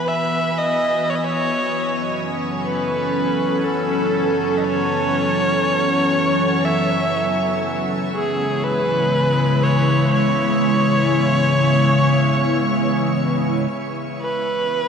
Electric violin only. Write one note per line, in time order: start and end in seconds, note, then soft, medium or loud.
0.08 0.59 E5 medium
0.58 1.11 D#5 medium
1.10 1.17 C#5 medium
1.15 1.26 D#5 medium
1.24 2.12 C#5 medium
2.65 3.66 B4 medium
3.65 4.59 A4 medium
4.57 4.67 D#5 medium
4.65 6.67 C#5 loud
6.65 7.40 E5 medium
8.16 8.65 G#4 medium
8.63 9.65 B4 medium
9.64 10.13 C#5 medium
10.13 13.16 C#5 loud
14.22 14.88 B4 medium